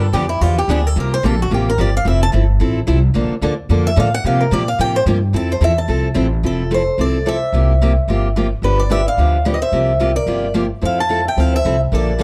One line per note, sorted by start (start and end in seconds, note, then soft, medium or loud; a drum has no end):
0.00 0.12 G2 medium
0.00 0.14 A4 medium
0.13 0.40 F2 loud
0.13 0.24 D3 medium
0.13 0.24 F3 medium
0.13 0.25 B3 medium
0.13 0.25 D4 medium
0.13 0.29 G4 medium
0.13 0.25 G4 medium
0.29 0.41 E4 medium
0.41 0.67 E2 medium
0.41 0.60 D3 medium
0.41 0.60 F3 medium
0.41 0.60 B3 medium
0.41 0.60 D4 medium
0.41 0.56 F4 medium
0.41 0.60 G4 medium
0.58 0.69 G4 medium
0.68 0.95 D2 loud
0.68 0.79 D3 medium
0.68 0.79 F3 medium
0.68 0.79 B3 loud
0.68 0.80 D4 loud
0.68 0.80 G4 loud
0.68 0.87 G#4 medium
0.87 0.97 A4 medium
0.96 1.23 C2 medium
0.96 1.14 C3 medium
0.96 1.15 F3 medium
0.96 1.15 A#3 medium
0.96 1.15 F4 medium
0.96 1.15 G4 medium
1.00 1.13 A#4 medium
1.14 1.25 C5 loud
1.23 1.50 A#1 medium
1.23 1.34 C3 medium
1.23 1.34 F3 medium
1.23 1.34 A#3 medium
1.23 1.34 F4 medium
1.23 1.34 G4 medium
1.23 1.40 A4 medium
1.42 1.52 F#4 medium
1.51 1.77 A1 medium
1.51 1.69 C3 medium
1.51 1.69 F3 medium
1.51 1.70 A#3 medium
1.51 1.70 F4 medium
1.51 1.70 G4 medium
1.51 1.68 G4 medium
1.70 1.80 A#4 medium
1.78 2.05 G1 loud
1.78 1.88 C3 medium
1.78 1.89 F3 loud
1.78 1.89 A#3 medium
1.78 1.89 F4 medium
1.78 1.89 G4 loud
1.78 1.95 D5 medium
1.97 2.07 F5 loud
2.05 2.32 F1 medium
2.05 2.24 F3 medium
2.05 2.24 C4 medium
2.05 2.24 E4 medium
2.05 2.24 A4 medium
2.05 2.22 E5 medium
2.23 2.30 A5 loud
2.32 2.60 G1 medium
2.32 2.43 F3 medium
2.32 2.43 C4 medium
2.32 2.44 E4 medium
2.32 2.44 A4 medium
2.60 2.87 A1 medium
2.60 2.79 F3 medium
2.60 2.79 C4 medium
2.60 2.79 E4 medium
2.60 2.79 A4 medium
2.87 3.14 C2 loud
2.87 2.98 F3 loud
2.87 2.98 C4 medium
2.87 2.98 E4 loud
2.87 2.98 A4 loud
3.14 3.30 A#1 medium
3.14 3.33 D3 medium
3.14 3.33 F3 medium
3.14 3.33 A#3 medium
3.14 3.34 D4 medium
3.14 3.34 A4 medium
3.30 muted upright bass stroke soft
3.41 3.69 D2 medium
3.41 3.53 D3 medium
3.41 3.53 F3 medium
3.41 3.53 A#3 loud
3.41 3.53 D4 medium
3.41 3.53 A4 loud
3.69 3.96 F2 medium
3.69 3.88 D3 medium
3.69 3.88 F3 medium
3.69 3.89 A#3 medium
3.69 3.89 D4 medium
3.69 3.89 A4 medium
3.87 3.98 E5 loud
3.96 4.23 A2 medium
3.96 4.07 D3 medium
3.96 4.07 F3 medium
3.96 4.07 A#3 loud
3.96 4.08 D4 loud
3.96 4.08 A4 loud
3.96 4.14 F5 medium
4.14 4.25 F#5 loud
4.24 4.51 C3 medium
4.24 4.43 C3 medium
4.24 4.43 F3 medium
4.24 4.43 A#3 medium
4.24 4.44 F4 medium
4.24 4.44 G4 medium
4.24 4.41 F5 medium
4.41 4.52 A#4 medium
4.51 4.78 A#2 loud
4.51 4.62 C3 medium
4.51 4.62 F3 medium
4.51 4.62 A#3 loud
4.51 4.63 F4 medium
4.51 4.62 G4 medium
4.51 4.68 D5 loud
4.68 4.80 F5 loud
4.79 5.05 A2 medium
4.79 4.97 C3 medium
4.79 4.98 F3 medium
4.79 4.98 A#3 medium
4.79 4.98 F4 medium
4.79 4.98 G4 medium
4.79 4.95 G5 loud
4.96 5.03 C5 loud
5.06 5.33 G2 loud
5.06 5.17 C3 loud
5.06 5.17 F3 loud
5.06 5.17 A#3 loud
5.06 5.17 F4 loud
5.06 5.17 G4 loud
5.33 5.60 F2 medium
5.33 5.52 F3 medium
5.33 5.52 C4 medium
5.33 5.52 E4 medium
5.33 5.53 A4 medium
5.33 5.50 A5 medium
5.52 5.62 C5 medium
5.61 5.88 E2 loud
5.61 5.71 F3 medium
5.61 5.71 C4 medium
5.61 5.72 E4 loud
5.61 5.72 A4 loud
5.61 5.78 E5 loud
5.78 6.03 A5 loud
5.88 6.15 C2 medium
5.88 6.07 F3 medium
5.88 6.07 C4 medium
5.88 6.07 E4 medium
5.88 6.07 A4 medium
6.14 6.43 A1 loud
6.14 6.25 F3 loud
6.14 6.26 C4 loud
6.14 6.26 E4 loud
6.14 6.26 A4 loud
6.43 6.87 F1 medium
6.43 6.62 F3 medium
6.43 6.62 C4 medium
6.43 6.62 E4 medium
6.43 6.70 F4 medium
6.43 6.62 A4 medium
6.43 6.73 A4 medium
6.71 6.81 F3 medium
6.71 6.81 C4 medium
6.71 6.81 E4 medium
6.71 6.82 A4 loud
6.71 6.97 A4 medium
6.71 7.01 C5 medium
6.98 7.42 C2 medium
6.98 7.16 F3 medium
6.98 7.17 C4 medium
6.98 7.17 E4 medium
6.98 7.17 A4 medium
6.98 7.25 A4 medium
6.98 7.28 D5 medium
7.26 7.36 F3 medium
7.26 7.36 C4 medium
7.26 7.36 E4 medium
7.26 7.37 A4 medium
7.26 8.48 C5 medium
7.26 8.48 E5 medium
7.52 7.97 C2 medium
7.52 7.72 C3 medium
7.52 7.72 F3 medium
7.52 7.72 A#3 medium
7.52 7.72 F4 medium
7.52 7.72 G4 medium
7.81 7.91 C3 medium
7.81 7.91 F3 medium
7.81 7.92 A#3 medium
7.81 7.92 F4 medium
7.81 7.92 G4 loud
8.08 8.52 G1 medium
8.08 8.26 C3 medium
8.08 8.27 F3 medium
8.08 8.27 A#3 medium
8.08 8.27 F4 medium
8.08 8.27 G4 medium
8.36 8.46 C3 medium
8.36 8.46 F3 medium
8.36 8.46 A#3 medium
8.36 8.46 F4 medium
8.36 8.46 G4 medium
8.62 9.06 G1 medium
8.62 8.81 D3 medium
8.62 8.82 F3 medium
8.62 8.82 B3 medium
8.62 8.82 D4 medium
8.62 8.78 G4 medium
8.62 8.82 G4 medium
8.62 8.78 B4 medium
8.79 8.89 B4 medium
8.79 8.91 D5 medium
8.90 9.00 D3 medium
8.90 9.00 F3 medium
8.90 9.01 B3 medium
8.90 9.01 D4 medium
8.90 9.01 G4 loud
8.90 9.05 B4 medium
8.90 9.05 E5 loud
9.06 9.43 D5 medium
9.06 9.44 F5 loud
9.17 9.61 D2 medium
9.17 9.36 D3 medium
9.17 9.36 F3 medium
9.17 9.37 B3 medium
9.17 9.37 D4 medium
9.17 9.37 G4 medium
9.45 9.55 D3 medium
9.45 9.55 F3 medium
9.45 9.56 B3 medium
9.45 9.56 D4 loud
9.45 9.56 G4 loud
9.52 9.60 B4 medium
9.52 9.61 D#5 medium
9.62 10.13 C5 medium
9.62 10.16 E5 loud
9.72 10.16 C2 medium
9.72 9.91 C3 medium
9.72 9.91 F3 medium
9.72 9.91 A#3 medium
9.72 9.91 F4 medium
9.72 9.91 G4 medium
10.00 10.10 C3 medium
10.00 10.10 F3 medium
10.00 10.10 A#3 medium
10.00 10.10 F4 medium
10.00 10.11 G4 medium
10.16 10.52 A#4 medium
10.16 10.52 D5 medium
10.26 10.71 G1 medium
10.26 10.45 C3 medium
10.26 10.46 F3 medium
10.26 10.46 A#3 medium
10.26 10.46 F4 medium
10.26 10.46 G4 medium
10.54 10.65 C3 medium
10.54 10.65 F3 medium
10.54 10.65 A#3 medium
10.54 10.65 F4 loud
10.54 10.65 G4 loud
10.81 11.26 F2 medium
10.81 11.00 F3 medium
10.81 11.01 C4 medium
10.81 11.01 E4 medium
10.81 11.01 A4 medium
10.81 10.97 C5 medium
10.81 10.98 F5 medium
10.98 11.24 F5 medium
10.98 11.25 A5 loud
11.09 11.20 F3 medium
11.09 11.20 C4 medium
11.09 11.20 E4 medium
11.09 11.20 A4 medium
11.25 11.36 E5 medium
11.25 11.40 G5 medium
11.37 11.60 D2 medium
11.37 11.56 F3 medium
11.37 11.56 C4 medium
11.37 11.56 E4 medium
11.37 11.56 A4 medium
11.37 11.52 C5 medium
11.37 11.54 F5 loud
11.54 11.79 C5 medium
11.54 11.80 E5 medium
11.65 11.88 C2 medium
11.65 11.75 F3 medium
11.65 11.75 C4 loud
11.65 11.75 E4 medium
11.65 11.76 A4 loud
11.92 12.23 A#1 medium
11.92 12.10 D3 medium
11.92 12.11 F3 medium
11.92 12.11 A#3 medium
11.92 12.11 D4 medium
11.92 12.11 A4 medium
11.92 12.18 A#4 medium
11.92 12.21 D5 medium
12.19 12.23 D3 medium
12.19 12.23 F3 medium
12.19 12.23 A#3 medium
12.19 12.23 D4 medium
12.19 12.23 A4 medium
12.19 12.23 D5 medium